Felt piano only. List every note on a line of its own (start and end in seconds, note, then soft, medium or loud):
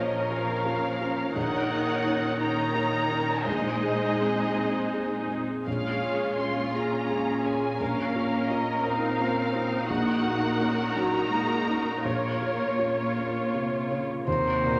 0.00 1.31 A#1 soft
0.00 0.65 A#3 soft
0.00 0.27 C#4 soft
0.00 0.31 F4 soft
0.30 0.62 C#4 soft
0.30 0.62 F4 soft
0.65 0.97 A#3 soft
0.65 0.97 F4 soft
1.00 1.32 C#4 soft
1.00 1.32 F4 soft
1.36 3.43 A#1 soft
1.70 2.01 A#3 soft
1.70 2.02 D#4 soft
2.05 2.37 C#4 soft
2.05 2.37 D#4 soft
2.40 2.72 C#4 soft
2.40 2.72 D#4 soft
2.75 3.07 A#3 soft
2.75 3.07 D#4 soft
3.11 3.43 C#4 soft
3.11 3.44 D#4 soft
3.46 5.62 A#1 soft
3.83 4.16 G#3 soft
3.83 4.16 G#4 soft
4.20 4.53 C4 soft
4.20 4.53 G#4 soft
4.56 4.89 C4 soft
4.56 4.89 G#4 soft
4.93 5.26 G#3 soft
4.93 5.27 G#4 soft
5.29 5.63 C4 soft
5.29 5.63 G#4 soft
5.67 7.76 A#1 soft
6.04 6.36 G#4 soft
6.39 6.72 C#4 soft
6.39 6.72 G#4 soft
6.75 7.07 C#4 soft
6.75 7.07 G#4 soft
7.09 7.41 G#3 soft
7.09 7.42 G#4 soft
7.45 7.76 C#4 soft
7.45 7.77 G#4 soft
7.80 9.85 A#1 soft
8.15 8.47 A#3 soft
8.15 8.47 F4 soft
8.50 8.82 C#4 soft
8.50 8.82 F4 soft
8.85 9.17 C#4 soft
8.85 9.17 F4 soft
9.20 9.51 A#3 soft
9.20 9.51 F4 soft
9.55 9.86 C#4 soft
9.55 9.86 F4 soft
9.90 12.01 A#1 soft
10.24 10.56 A#3 soft
10.24 10.56 D#4 soft
10.61 10.93 C#4 soft
10.61 10.93 D#4 soft
10.95 11.28 C#4 soft
10.95 11.28 D#4 soft
11.32 11.65 A#3 soft
11.32 11.65 D#4 soft
11.68 12.01 C#4 soft
11.68 12.01 D#4 soft
12.05 14.23 A#1 soft
12.41 12.75 A#3 soft
12.41 12.76 F4 soft
12.79 13.12 C#4 soft
12.79 13.12 F4 soft
13.17 13.50 C#4 soft
13.17 13.50 F4 soft
13.54 13.87 A#3 soft
13.54 13.87 F4 soft
13.91 14.24 C#4 soft
13.91 14.24 F4 soft
14.27 14.80 D#2 soft
14.64 14.80 A#2 soft